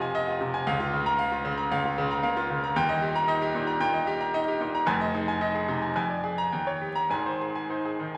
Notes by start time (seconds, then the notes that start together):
Already playing: F1 F2 C3 F4 D#5 F5
0.00 G#5
0.15 D#5
0.28 F4
0.41 C3
0.54 G#5
0.67 C#2 F5
0.80 F4
0.93 C#3
1.06 A#5
1.19 F5
1.32 F4
1.45 C#3
1.57 A#5
1.71 C#2 F5
1.85 F4
1.98 C#3
2.11 A#5
2.23 A#3 F5
2.37 F4
2.50 C#3
2.63 A#5
2.75 D#1 D#2 G5
2.89 D#5
3.02 G4
3.15 A#5
3.28 D#4 D#5
3.42 G4
3.54 A#2 D#4
3.67 A#5
3.80 A#2 G5
3.94 D#5
4.07 G4
4.20 A#5
4.34 D#4 D#5
4.48 G4
4.61 A#2 D#4
4.75 A#5
4.86 F1 F2 G#5
5.01 D#5
5.14 D#4 G#4
5.28 G#5
5.41 D#4 D#5
5.55 G#4
5.68 C3 D#4
5.82 G#5
5.96 F2 G#5
6.10 D5
6.24 G#4
6.38 A#5
6.52 D#2 G5
6.67 C#5
6.81 G4
6.95 A#5
7.10 G#1 G#2 G#5
7.26 C5
7.41 G#4
7.55 G#5
7.70 D#4 C5
7.85 G#4
7.99 D#3 D#4